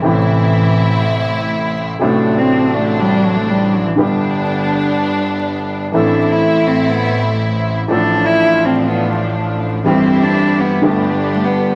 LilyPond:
<<
  \new Staff \with { instrumentName = "String section" } { \time 4/4 \key a \minor \tempo 4 = 122 <a c' e'>1 | <fis c' d'>1 | <g b d'>1 | <a c' e'>1 |
<f a d'>1 | <c' e' g'>2 <b d' g'>2 | }
  \new Staff \with { instrumentName = "Cello" } { \time 4/4 \key a \minor e2. r4 | a8. c'8. a8 g8 fis16 a16 g8 fis16 e16 | d2. r4 | d'8. e'8. c'8 b8 a8 r4 |
d'8. e'8. c'8 b8 a8 r4 | c'8. d'8. b8 a8 g8 a16 b8. | }
  \new Staff \with { instrumentName = "Grand piano" } { \clef bass \time 4/4 \key a \minor <a,, a, c e a e'>1 | <a,, a, c fis a d'>1 | <g,, g, d g b g'>1 | <a,, a, e a c' a'>1 |
<a,, a, f a d' a'>1 | <g,, g, e g c' g'>2 <g,, g, d g b g'>2 | }
  \new Staff \with { instrumentName = "Double bass" } { \clef bass \time 4/4 \key a \minor a,,1 | a,,1 | g,,1 | a,,1 |
a,,1 | g,,2 g,,2 | }
>>